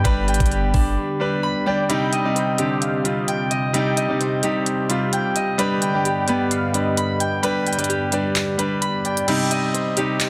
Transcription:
0.00 1.86 D3 medium
0.00 1.91 D3 medium
0.00 0.04 G3 loud
0.00 1.86 B3 medium
0.00 2.01 B3 loud
0.00 0.05 D4 loud
0.00 0.50 G4 medium
0.00 1.86 G4 medium
0.00 0.06 B4 loud
0.00 0.28 G5 medium
0.04 0.29 G1 loud
0.04 0.69 G3 loud
0.04 0.69 D4 loud
0.04 0.70 B4 loud
0.04 1.42 B5 loud
0.04 kick loud
0.04 closed hi-hat medium
0.28 0.40 G#1 loud
0.28 1.66 G5 medium
0.28 closed hi-hat soft
0.34 closed hi-hat medium
0.40 0.73 G1 loud
0.40 kick loud
0.40 closed hi-hat medium
0.46 closed hi-hat medium
0.51 2.58 G4 medium
0.51 closed hi-hat medium
0.74 0.97 G1 loud
0.74 2.19 D4 medium
0.74 kick medium
0.74 open hi-hat medium
1.20 1.53 G3 medium
1.20 1.53 D4 medium
1.20 1.53 B4 loud
1.43 2.42 B5 loud
1.66 1.83 G3 medium
1.66 1.83 D4 medium
1.66 1.88 D5 medium
1.66 1.83 D5 loud
1.66 1.89 G5 medium
1.89 2.13 C3 loud
1.89 5.55 C3 medium
1.89 2.14 G3 loud
1.89 5.55 C4 medium
1.89 2.14 D#4 loud
1.89 9.24 G4 medium
1.89 5.55 D#5 medium
1.89 2.78 G5 loud
1.89 3.27 G5 loud
1.89 closed hi-hat medium
2.13 3.50 D#5 medium
2.13 closed hi-hat medium
2.24 2.48 C3 medium
2.24 2.49 G3 medium
2.24 2.49 D#4 loud
2.36 4.20 C5 medium
2.36 closed hi-hat medium
2.58 2.91 C3 medium
2.58 2.92 D3 loud
2.58 2.91 G3 medium
2.58 4.43 G4 loud
2.58 closed hi-hat medium
2.82 3.04 F5 medium
2.82 closed hi-hat medium
3.04 3.52 C3 medium
3.04 3.53 G3 medium
3.04 3.53 F4 medium
3.04 3.70 D#5 medium
3.04 closed hi-hat medium
3.28 3.74 G5 loud
3.28 closed hi-hat medium
3.51 3.97 D#5 medium
3.51 closed hi-hat medium
3.73 3.98 C3 loud
3.73 3.98 G3 loud
3.73 3.98 D#4 loud
3.73 5.12 G5 loud
3.73 closed hi-hat medium
3.97 5.35 D#5 medium
3.97 closed hi-hat medium
4.09 4.33 C3 medium
4.09 4.33 G3 medium
4.09 4.34 D#4 medium
4.21 5.65 C5 medium
4.21 closed hi-hat medium
4.43 4.76 C3 medium
4.43 4.76 G3 medium
4.43 4.76 D#4 medium
4.43 6.05 G4 medium
4.43 closed hi-hat medium
4.66 closed hi-hat medium
4.89 5.37 C3 medium
4.89 5.38 G3 medium
4.89 5.38 F4 loud
4.89 closed hi-hat medium
5.13 5.81 G5 medium
5.13 closed hi-hat medium
5.36 7.14 D#5 medium
5.36 closed hi-hat medium
5.58 9.24 G2 medium
5.58 9.24 D3 medium
5.58 5.83 G3 loud
5.58 9.24 B3 medium
5.58 5.83 D4 loud
5.58 5.83 B4 loud
5.58 6.47 G5 loud
5.58 6.96 B5 medium
5.58 closed hi-hat medium
5.82 7.19 G5 medium
5.82 closed hi-hat medium
5.94 6.18 G3 medium
5.94 6.18 D4 medium
5.94 6.19 G4 medium
6.05 7.89 G4 medium
6.05 closed hi-hat medium
6.28 6.60 G3 medium
6.28 9.39 B3 loud
6.28 6.61 D4 medium
6.28 6.61 B4 loud
6.28 closed hi-hat medium
6.51 6.73 F5 medium
6.51 closed hi-hat medium
6.73 7.22 D3 medium
6.73 7.22 G3 medium
6.73 7.23 B4 medium
6.73 7.39 D#5 medium
6.73 closed hi-hat medium
6.97 7.42 B5 medium
6.97 closed hi-hat medium
7.20 7.66 G5 medium
7.20 closed hi-hat medium
7.43 7.67 G3 loud
7.43 7.68 D4 medium
7.43 7.68 B4 loud
7.43 8.80 B5 medium
7.43 closed hi-hat medium
7.66 9.04 G5 medium
7.66 closed hi-hat soft
7.73 closed hi-hat medium
7.78 8.02 G3 medium
7.78 8.03 D4 medium
7.78 8.03 B4 medium
7.78 closed hi-hat medium
7.84 closed hi-hat medium
7.89 9.97 G4 medium
7.89 closed hi-hat medium
8.12 8.45 G3 medium
8.12 9.57 D4 medium
8.12 8.45 D4 medium
8.12 8.46 B4 medium
8.12 closed hi-hat medium
8.36 clap loud
8.36 closed hi-hat medium
8.58 9.07 G3 medium
8.58 9.07 D4 medium
8.58 9.07 B4 loud
8.58 closed hi-hat medium
8.81 9.80 B5 medium
8.81 closed hi-hat medium
9.05 9.27 D5 medium
9.05 9.28 G5 medium
9.05 closed hi-hat soft
9.17 closed hi-hat medium
9.28 9.76 C3 loud
9.28 9.76 G3 loud
9.28 9.77 D#4 loud
9.28 10.29 G5 loud
9.28 closed hi-hat medium
9.28 crash loud
9.51 10.29 D#5 medium
9.51 closed hi-hat medium
9.74 10.29 C5 medium
9.74 closed hi-hat medium
9.97 10.29 C3 medium
9.97 10.29 G3 medium
9.97 10.29 D#4 loud
9.97 10.29 G4 loud
9.97 closed hi-hat medium
10.20 clap loud
10.20 closed hi-hat medium

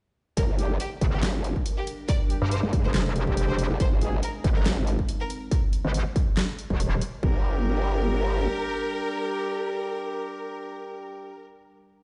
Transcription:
0.37 0.78 G1 medium
0.37 3.77 G3 medium
0.37 3.77 D4 medium
0.37 3.77 A#4 medium
0.37 0.45 A#4 loud
0.37 kick loud
0.37 closed hi-hat medium
0.58 0.70 G3 loud
0.58 0.70 D4 medium
0.58 0.70 G4 loud
0.58 closed hi-hat medium
0.80 0.88 G4 medium
0.80 closed hi-hat medium
1.01 1.21 G1 loud
1.01 kick loud
1.01 closed hi-hat medium
1.13 1.21 G4 medium
1.23 1.54 G1 loud
1.23 snare loud
1.23 clap loud
1.23 closed hi-hat medium
1.44 closed hi-hat medium
1.56 kick medium
1.66 closed hi-hat medium
1.77 1.85 G4 medium
1.87 open hi-hat medium
2.09 2.17 D5 loud
2.09 kick loud
2.09 closed hi-hat medium
2.30 2.37 G3 medium
2.30 2.37 D4 medium
2.30 2.37 G4 loud
2.30 closed hi-hat medium
2.42 2.61 G2 medium
2.51 2.59 C5 loud
2.51 closed hi-hat medium
2.63 2.83 G2 medium
2.73 kick loud
2.73 closed hi-hat medium
2.84 3.68 F1 loud
2.84 2.92 C5 loud
2.94 snare loud
2.94 clap loud
2.94 closed hi-hat medium
3.16 3.79 G3 medium
3.16 3.79 D4 medium
3.16 3.79 G4 loud
3.16 closed hi-hat medium
3.27 kick medium
3.37 closed hi-hat medium
3.49 3.57 C5 loud
3.59 open hi-hat medium
3.70 3.78 G1 loud
3.80 4.21 G#1 loud
3.80 5.50 G#3 medium
3.80 5.50 C4 medium
3.80 5.50 D#4 medium
3.80 3.88 C5 loud
3.80 kick loud
3.80 closed hi-hat medium
4.01 4.13 G#3 medium
4.01 4.13 D#4 medium
4.01 4.13 G#4 loud
4.01 closed hi-hat medium
4.23 4.31 A#4 loud
4.23 closed hi-hat medium
4.44 4.64 G#1 loud
4.44 kick loud
4.44 closed hi-hat medium
4.56 4.64 A#4 loud
4.66 4.97 G#1 loud
4.66 snare loud
4.66 clap loud
4.66 closed hi-hat medium
4.87 closed hi-hat medium
4.99 kick medium
5.09 closed hi-hat medium
5.20 5.28 A#4 loud
5.30 open hi-hat medium
5.51 kick loud
5.51 closed hi-hat medium
5.73 closed hi-hat medium
5.85 6.04 G#1 loud
5.94 closed hi-hat medium
6.16 kick loud
6.16 closed hi-hat soft
6.37 snare loud
6.37 clap medium
6.37 closed hi-hat medium
6.59 closed hi-hat soft
6.70 7.00 D#1 loud
6.70 kick medium
6.80 closed hi-hat medium
7.01 open hi-hat medium
7.23 8.47 G1 loud
7.23 11.42 G3 loud
7.23 11.42 G3 medium
7.23 11.42 D4 medium
7.23 11.42 G4 loud
7.23 11.42 A#4 medium
7.23 11.42 A#4 loud
7.23 kick loud

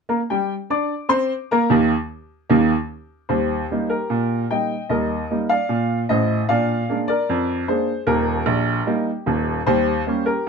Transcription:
0.09 0.20 A#3 medium
0.09 0.20 A#4 medium
0.09 0.20 A#5 medium
0.30 0.52 G3 medium
0.30 0.53 G4 medium
0.30 0.52 G5 medium
0.70 0.92 D4 medium
0.70 0.92 D5 medium
0.70 0.92 D6 medium
1.09 1.31 C4 medium
1.09 1.31 C5 medium
1.09 1.31 C6 medium
1.51 1.69 A#3 medium
1.51 1.73 A#4 medium
1.51 1.72 A#5 medium
1.70 1.92 D#2 medium
1.70 1.91 D#3 medium
1.70 1.92 A#3 medium
1.70 1.92 G4 medium
2.50 2.72 D#2 medium
2.50 2.72 D#3 medium
2.50 2.72 A#3 medium
2.50 2.71 G4 medium
3.29 3.63 D#2 medium
3.29 3.52 G3 soft
3.29 3.86 G4 medium
3.29 3.86 C5 medium
3.71 3.93 G3 soft
3.71 3.93 A#3 medium
3.71 3.93 D#4 medium
3.90 4.46 G4 soft
3.90 4.46 A#4 medium
4.10 4.44 A#2 medium
4.51 4.72 G3 soft
4.51 4.73 A#3 soft
4.51 4.73 D#4 soft
4.51 4.88 D#5 medium
4.51 4.82 G5 medium
4.89 5.23 D#2 medium
4.89 5.13 G3 medium
4.89 5.46 A#4 medium
4.89 5.37 D#5 medium
5.31 5.53 G3 medium
5.31 5.52 A#3 soft
5.31 5.52 D#4 medium
5.49 6.05 D5 medium
5.49 5.97 F5 medium
5.69 6.03 A#2 medium
6.09 6.41 A1 medium
6.09 6.41 A2 medium
6.09 6.47 C5 medium
6.09 6.41 D#5 medium
6.49 6.83 A#2 medium
6.49 6.72 D4 soft
6.49 7.05 D5 medium
6.49 6.96 F5 medium
6.89 7.11 G#3 medium
6.89 7.11 A#3 medium
6.89 7.12 D4 medium
7.08 7.65 A#4 medium
7.08 7.56 D5 medium
7.29 7.63 F2 medium
7.68 7.90 G#3 soft
7.68 7.90 A#3 soft
7.68 7.90 D4 medium
7.68 8.06 G#4 medium
7.68 8.00 C5 medium
8.07 8.39 D#1 medium
8.07 8.39 D#2 medium
8.07 9.23 G4 medium
8.07 9.03 A#4 medium
8.46 8.79 A#1 medium
8.87 9.09 G3 medium
8.87 9.09 A#3 medium
8.87 9.09 D#4 medium
9.26 9.58 D#1 medium
9.26 9.59 D#2 medium
9.67 10.01 D#2 medium
9.67 9.90 G3 medium
9.67 10.23 G4 medium
9.67 10.23 C5 loud
10.07 10.29 G3 medium
10.07 10.29 A#3 soft
10.07 10.30 C#4 medium
10.26 10.49 G4 medium
10.26 10.49 A#4 medium

